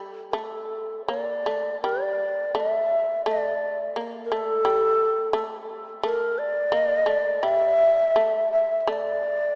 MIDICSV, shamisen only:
0, 0, Header, 1, 2, 480
1, 0, Start_track
1, 0, Tempo, 744417
1, 203, Time_signature, 4, 2, 24, 8
1, 1639, Tempo, 697674
1, 4999, Tempo, 718563
1, 6419, End_track
2, 0, Start_track
2, 0, Title_t, "Shamisen"
2, 0, Program_c, 0, 106
2, 0, Note_on_c, 0, 55, 45
2, 208, Note_off_c, 0, 55, 0
2, 215, Note_on_c, 0, 57, 64
2, 693, Note_off_c, 0, 57, 0
2, 699, Note_on_c, 0, 58, 62
2, 934, Note_off_c, 0, 58, 0
2, 942, Note_on_c, 0, 57, 54
2, 1177, Note_off_c, 0, 57, 0
2, 1186, Note_on_c, 0, 55, 61
2, 1639, Note_off_c, 0, 55, 0
2, 1642, Note_on_c, 0, 57, 63
2, 2125, Note_off_c, 0, 57, 0
2, 2133, Note_on_c, 0, 57, 71
2, 2613, Note_off_c, 0, 57, 0
2, 2615, Note_on_c, 0, 58, 62
2, 2853, Note_off_c, 0, 58, 0
2, 2860, Note_on_c, 0, 57, 59
2, 3085, Note_off_c, 0, 57, 0
2, 3088, Note_on_c, 0, 55, 69
2, 3556, Note_off_c, 0, 55, 0
2, 3559, Note_on_c, 0, 57, 68
2, 4034, Note_off_c, 0, 57, 0
2, 4042, Note_on_c, 0, 57, 74
2, 4510, Note_off_c, 0, 57, 0
2, 4513, Note_on_c, 0, 58, 73
2, 4745, Note_off_c, 0, 58, 0
2, 4748, Note_on_c, 0, 57, 61
2, 4996, Note_off_c, 0, 57, 0
2, 5001, Note_on_c, 0, 55, 73
2, 5479, Note_off_c, 0, 55, 0
2, 5488, Note_on_c, 0, 57, 68
2, 5960, Note_off_c, 0, 57, 0
2, 5967, Note_on_c, 0, 57, 69
2, 6419, Note_off_c, 0, 57, 0
2, 6419, End_track
0, 0, End_of_file